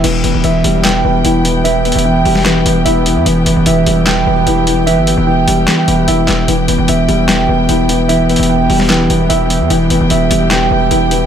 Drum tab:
CC |x-----------------------------------------------|------------------------------------------------|------------------------------------------------|------------------------------------------------|
HH |x-----x-----x-----x-----x-----------x-----x-----|x-----x-x-x-------o-----x-----x-----x-----x-----|x-----x-----x-----x-----x-----------x-----x-----|x-----x-----------x-----x-----x-----x-----x-----|
CP |------------------------x-----------------------|------------------------x-----------------------|------------------------x-----------------------|------------------------x-----------------x-----|
SD |------------------------o-----------------------|---------------------o--o-----------------------|------------------------o-----------------------|------------------------o-----------------o-----|

CC |------------------------------------------------|------------------------------------------------|------------------------------------------------|
HH |x-----x-----x-----x-----x-----------x-----x-----|x-----x-x-x-------o-----x-----x-----x-----x-----|x-----x-----x-----x-----x-----------x-----x-----|
CP |------------------------x-----------------------|------------------------x-----------------------|------------------------x-----------------------|
SD |------------------------o-----------------------|---------------------o--o-----------------------|------------------------o-----------------------|